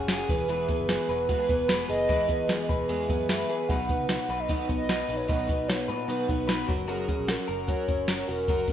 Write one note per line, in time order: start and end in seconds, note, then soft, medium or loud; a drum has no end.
0.00 0.23 F#1 medium
0.00 0.29 F#3 medium
0.00 0.34 C#4 medium
0.00 0.34 F#4 medium
0.08 0.29 A#3 medium
0.08 0.30 C#4 medium
0.08 0.30 F#4 medium
0.08 0.28 G#4 medium
0.08 snare loud
0.08 closed hi-hat medium
0.29 0.72 E1 medium
0.29 0.48 E3 medium
0.29 0.48 B3 medium
0.29 0.48 G#4 medium
0.29 0.48 B4 medium
0.29 kick loud
0.29 open hi-hat medium
0.48 0.69 E3 medium
0.48 0.69 G#3 medium
0.48 0.69 B3 medium
0.48 0.69 G#4 medium
0.48 0.87 G#4 medium
0.48 0.67 B4 medium
0.48 closed hi-hat medium
0.68 0.88 B3 soft
0.68 0.89 G#4 soft
0.68 0.89 B4 medium
0.68 kick medium
0.68 closed hi-hat medium
0.80 0.97 F#1 medium
0.88 1.09 G#3 medium
0.88 1.09 B3 medium
0.88 1.08 G#4 medium
0.88 1.08 B4 medium
0.88 1.07 B4 medium
0.88 snare loud
0.88 closed hi-hat medium
1.08 1.35 E1 loud
1.08 1.29 B3 soft
1.08 1.29 G#4 soft
1.08 1.29 B4 medium
1.08 1.85 B4 loud
1.08 closed hi-hat medium
1.29 1.49 E3 medium
1.29 1.49 G#3 medium
1.29 1.50 B3 medium
1.29 1.39 F#4 medium
1.29 1.49 G#4 medium
1.29 1.47 B4 medium
1.29 kick medium
1.29 closed hi-hat medium
1.39 1.88 G#4 soft
1.48 1.83 E1 medium
1.48 1.69 B3 soft
1.48 1.70 G#4 soft
1.48 1.69 B4 medium
1.48 kick medium
1.48 closed hi-hat medium
1.69 1.89 G#3 medium
1.69 1.89 B3 medium
1.69 1.88 G#4 medium
1.69 1.87 B4 medium
1.69 snare loud
1.69 closed hi-hat medium
1.88 2.09 F#1 medium
1.88 2.08 B3 soft
1.88 2.09 G#4 soft
1.88 2.09 B4 medium
1.88 2.65 D#5 loud
1.88 open hi-hat medium
2.08 2.66 E1 loud
2.08 2.29 E3 medium
2.08 2.29 G#3 medium
2.08 2.29 B3 medium
2.08 2.28 G#4 medium
2.08 2.27 B4 medium
2.08 kick loud
2.08 closed hi-hat medium
2.28 2.48 B3 soft
2.28 2.49 G#4 medium
2.28 2.49 B4 medium
2.28 kick medium
2.28 closed hi-hat medium
2.47 2.68 G#3 medium
2.47 2.69 B3 medium
2.47 2.68 G#4 medium
2.47 2.66 B4 medium
2.47 snare loud
2.47 closed hi-hat medium
2.68 2.86 E1 medium
2.68 2.88 B3 soft
2.68 2.88 G#4 soft
2.68 2.88 B4 medium
2.68 kick medium
2.68 closed hi-hat medium
2.88 3.07 E2 medium
2.88 3.09 E3 medium
2.88 3.09 G#3 medium
2.88 3.09 B3 medium
2.88 3.09 G#4 medium
2.88 3.07 B4 medium
2.88 closed hi-hat medium
3.09 3.43 F#2 medium
3.09 3.29 B3 soft
3.09 3.29 G#4 medium
3.09 3.29 B4 medium
3.09 kick medium
3.09 closed hi-hat medium
3.28 3.49 G#3 medium
3.28 3.50 B3 medium
3.28 3.49 G#4 medium
3.28 3.48 B4 medium
3.28 3.67 E5 medium
3.28 snare loud
3.28 closed hi-hat medium
3.49 3.69 B3 soft
3.49 3.70 G#4 soft
3.49 3.69 B4 medium
3.49 closed hi-hat medium
3.68 3.95 B1 medium
3.68 3.89 B2 medium
3.68 3.89 D#3 medium
3.68 3.90 F#3 medium
3.68 3.89 B3 medium
3.68 3.88 D#4 medium
3.68 3.87 B4 medium
3.68 4.06 F#5 loud
3.68 kick loud
3.68 closed hi-hat medium
3.88 4.07 F#3 soft
3.88 4.08 B3 soft
3.88 4.09 D#4 soft
3.88 4.09 B4 medium
3.88 kick medium
3.88 closed hi-hat medium
3.99 4.16 C#2 medium
4.08 4.29 F#3 medium
4.08 4.29 B3 medium
4.08 4.28 D#4 medium
4.08 4.28 B4 medium
4.08 4.41 F#5 loud
4.08 snare loud
4.08 closed hi-hat medium
4.29 4.54 B1 medium
4.29 4.47 F#3 soft
4.29 4.48 B3 soft
4.29 4.48 D#4 soft
4.29 4.48 B4 soft
4.29 closed hi-hat medium
4.39 4.77 D#5 medium
4.48 4.69 B2 medium
4.48 4.69 D#3 medium
4.48 4.69 F#3 medium
4.48 4.69 B3 medium
4.48 4.68 D#4 medium
4.48 4.67 B4 medium
4.48 kick medium
4.48 closed hi-hat medium
4.68 5.03 B1 medium
4.68 4.87 F#3 soft
4.68 4.88 B3 medium
4.68 4.89 D#4 soft
4.68 4.89 B4 medium
4.68 kick medium
4.68 closed hi-hat medium
4.78 5.16 D#5 loud
4.88 5.09 F#3 medium
4.88 5.08 B3 medium
4.88 5.07 D#4 medium
4.88 5.06 B4 medium
4.88 snare loud
4.88 closed hi-hat medium
5.07 5.26 A#1 medium
5.07 5.27 F#3 soft
5.07 5.28 B3 soft
5.07 5.28 D#4 soft
5.07 5.28 B4 medium
5.07 open hi-hat medium
5.17 5.22 C#5 medium
5.27 5.90 B1 medium
5.27 5.48 B2 medium
5.27 5.48 D#3 medium
5.27 5.49 F#3 medium
5.27 5.49 B3 medium
5.27 5.48 D#4 medium
5.27 5.47 B4 medium
5.27 5.69 D#5 loud
5.27 kick loud
5.27 closed hi-hat medium
5.48 5.67 F#3 soft
5.48 5.68 B3 soft
5.48 5.69 D#4 soft
5.48 5.69 B4 medium
5.48 kick medium
5.48 closed hi-hat medium
5.68 5.89 F#3 medium
5.68 5.88 B3 medium
5.68 5.88 D#4 medium
5.68 5.87 B4 medium
5.68 5.90 C#5 medium
5.68 snare loud
5.68 closed hi-hat medium
5.88 6.06 A#2 medium
5.88 6.08 F#3 soft
5.88 6.08 B3 soft
5.88 6.08 D#4 medium
5.88 6.08 B4 soft
5.88 6.28 B4 medium
5.88 closed hi-hat medium
6.08 6.28 B2 medium
6.08 6.26 B2 loud
6.08 6.29 D#3 medium
6.08 6.29 F#3 medium
6.08 6.29 B3 medium
6.08 6.28 D#4 medium
6.08 6.27 B4 medium
6.08 closed hi-hat loud
6.28 6.63 B1 medium
6.28 6.46 F#3 soft
6.28 6.48 B3 soft
6.28 6.48 D#4 medium
6.28 6.48 B4 medium
6.28 kick medium
6.28 closed hi-hat medium
6.48 6.68 F#3 medium
6.48 6.69 B3 medium
6.48 6.69 D#4 medium
6.48 6.67 B4 medium
6.48 snare loud
6.48 closed hi-hat medium
6.67 7.11 F#1 loud
6.67 6.86 F#3 medium
6.67 6.88 C#4 soft
6.67 6.88 F#4 medium
6.67 6.88 A#4 medium
6.67 kick loud
6.67 open hi-hat medium
6.88 7.08 F#3 medium
6.88 7.09 C#4 medium
6.88 7.08 F#4 medium
6.88 7.32 G#4 medium
6.88 7.06 A#4 medium
6.88 closed hi-hat medium
7.08 7.27 C#4 soft
7.08 7.28 F#4 soft
7.08 7.28 A#4 soft
7.08 kick medium
7.08 closed hi-hat medium
7.19 7.36 A#1 medium
7.27 7.48 F#3 medium
7.27 7.48 C#4 medium
7.27 7.49 F#4 medium
7.27 7.69 A#4 medium
7.27 7.47 A#4 medium
7.27 snare loud
7.27 closed hi-hat medium
7.48 7.74 F#1 medium
7.48 7.66 C#4 soft
7.48 7.67 F#4 soft
7.48 7.67 A#4 soft
7.48 closed hi-hat medium
7.67 7.88 F#3 medium
7.67 7.88 C#4 medium
7.67 7.88 F#4 medium
7.67 7.86 A#4 medium
7.67 8.25 C#5 loud
7.67 kick medium
7.67 closed hi-hat medium
7.87 8.22 F#1 medium
7.87 8.07 C#4 soft
7.87 8.08 F#4 soft
7.87 8.08 A#4 medium
7.87 kick medium
7.87 closed hi-hat medium
8.07 8.28 F#3 medium
8.07 8.28 C#4 medium
8.07 8.27 F#4 medium
8.07 8.26 A#4 medium
8.07 snare loud
8.07 closed hi-hat medium
8.27 8.46 E1 medium
8.27 8.47 C#4 soft
8.27 8.48 F#4 soft
8.27 8.48 A#4 soft
8.27 8.73 A#4 medium
8.27 open hi-hat medium
8.48 8.73 F#1 loud
8.48 8.68 F#3 medium
8.48 8.68 C#4 medium
8.48 8.69 F#4 medium
8.48 8.67 A#4 medium
8.48 kick loud
8.48 closed hi-hat medium
8.68 8.73 C#4 medium
8.68 8.73 A#4 soft
8.68 kick medium
8.68 closed hi-hat medium